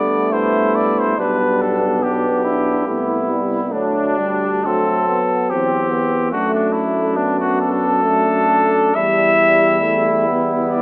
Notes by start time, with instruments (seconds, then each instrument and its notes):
Already playing: tuba G2, euphonium A3, trombone A3, flugelhorn B3, cornet D5
0.32 euphonium B3, flugelhorn E4, cornet C5
0.76 cornet D5
1.00 cornet C5
1.18 tuba B1, trombone G3, euphonium B3, flugelhorn D4, cornet B4
1.62 cornet A4
2.02 trombone B3, flugelhorn D4, cornet G4
2.44 trombone D4, flugelhorn E4
2.86 tuba C2, euphonium A3, trombone B3, flugelhorn E4
3.30 euphonium G3
3.72 tuba D2, euphonium F#3, trombone A3, flugelhorn D4, cornet D4
4.18 euphonium G3, trombone G3
4.64 trombone F#3, euphonium A3, flugelhorn C4, cornet A4
5.07 euphonium B3
5.50 tuba E2, euphonium C4, flugelhorn C4, cornet G4
5.91 euphonium B3
6.31 tuba F#2, euphonium A3, trombone A3, flugelhorn D4, cornet F#4
6.54 cornet D4
6.72 cornet E4
7.16 trombone B3, cornet D4
7.40 cornet F#4
7.61 cornet A4
8.03 trombone A3, euphonium A3, flugelhorn D4
8.95 tuba E2, trombone G3, euphonium G3, flugelhorn E4, cornet E5
9.82 trombone A3
10.27 trombone B3
10.69 cornet D5